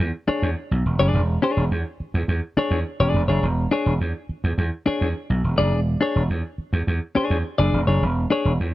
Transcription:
0.00 0.10 E2 loud
0.28 0.49 D4 medium
0.28 0.49 G#4 medium
0.28 0.49 C#5 medium
0.28 muted slap bass stroke soft
0.42 0.53 E2 loud
0.71 0.82 B1 medium
0.86 0.97 E1 medium
0.99 1.11 F#1 medium
0.99 1.21 D4 medium
0.99 1.21 G#4 medium
0.99 1.20 D5 loud
1.14 1.36 E1 loud
1.42 1.63 D4 medium
1.42 1.64 G#4 medium
1.42 1.64 C#5 medium
1.57 1.68 E1 medium
1.71 1.82 E2 loud
2.00 muted slap bass stroke soft
2.14 2.25 E2 medium
2.28 2.39 E2 loud
2.57 2.78 D4 medium
2.57 2.79 G#4 medium
2.57 2.79 C#5 medium
2.57 muted slap bass stroke soft
2.71 2.82 E2 medium
3.00 3.11 E1 medium
3.00 3.22 D4 medium
3.00 3.22 G#4 medium
3.00 3.21 D5 medium
3.14 3.25 E1 loud
3.28 3.39 F#1 medium
3.28 3.46 D4 medium
3.28 3.45 G#4 medium
3.28 3.45 C#5 medium
3.43 3.65 E1 loud
3.71 3.93 D4 medium
3.71 3.93 G#4 medium
3.71 3.93 C#5 medium
3.86 3.97 E1 medium
4.01 4.12 E2 loud
4.29 muted slap bass stroke soft
4.44 4.55 E2 medium
4.58 4.69 E2 loud
4.86 5.07 D4 medium
4.86 5.08 G#4 medium
4.86 5.08 C#5 medium
4.86 muted slap bass stroke soft
5.01 5.12 E2 medium
5.30 5.41 B1 loud
5.44 5.55 E1 medium
5.58 5.72 F#1 medium
5.58 5.80 D4 medium
5.58 5.79 G#4 medium
5.58 5.79 D5 medium
5.72 5.95 E1 loud
6.01 6.22 D4 medium
6.01 6.22 G#4 medium
6.01 6.23 C#5 medium
6.16 6.27 E1 medium
6.30 6.41 E2 medium
6.58 muted slap bass stroke soft
6.73 6.84 E2 loud
6.87 6.98 E2 loud
7.15 7.37 D4 medium
7.15 7.37 G#4 medium
7.15 7.37 C#5 medium
7.15 muted slap bass stroke soft
7.30 7.41 E2 loud
7.58 7.70 F#1 medium
7.58 7.80 D4 medium
7.58 7.80 G#4 medium
7.58 7.80 D5 medium
7.73 7.84 E1 medium
7.87 7.99 F#1 medium
7.87 8.05 D4 medium
7.87 8.04 G#4 medium
7.87 8.04 C#5 medium
8.02 8.24 E1 loud
8.30 8.51 D4 medium
8.30 8.52 G#4 medium
8.30 8.52 C#5 loud
8.45 8.56 E1 medium
8.60 8.71 E2 medium

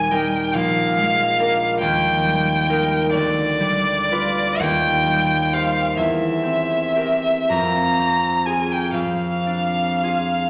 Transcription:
0.00 0.56 D#2 medium
0.00 0.57 A#2 soft
0.00 0.10 A#4 soft
0.00 0.12 G#5 loud
0.11 0.56 G3 soft
0.11 0.57 D#4 soft
0.11 1.38 A#4 soft
0.11 0.55 G5 medium
0.53 1.84 A#1 medium
0.53 1.79 F5 medium
0.97 1.84 G#3 medium
1.39 1.84 D4 soft
1.39 2.68 A#4 soft
1.80 3.16 D#2 medium
1.80 3.09 G5 medium
2.25 3.59 G3 soft
2.69 3.17 D#4 soft
2.69 3.17 A#4 soft
3.12 4.65 D2 medium
3.12 4.63 D5 medium
3.60 5.06 G3 soft
4.12 4.65 F4 soft
4.12 4.65 B4 soft
4.60 5.99 D#2 medium
4.60 5.55 G5 medium
5.07 7.53 G3 soft
5.53 6.95 G4 soft
5.53 8.98 C5 soft
5.53 5.96 F5 medium
5.97 7.53 E2 medium
5.97 7.51 E5 medium
6.43 7.98 C4 soft
6.96 7.53 G4 soft
6.96 7.53 A#4 soft
7.49 8.93 F2 medium
7.49 8.47 A#5 medium
7.99 8.98 C4 soft
8.46 10.02 F4 soft
8.46 10.03 G#4 soft
8.46 8.73 G#5 medium
8.72 8.94 G5 medium
8.94 10.50 F2 soft
8.94 10.50 F5 medium
9.46 10.50 D4 soft
10.03 10.50 F4 soft
10.03 10.50 G#4 soft

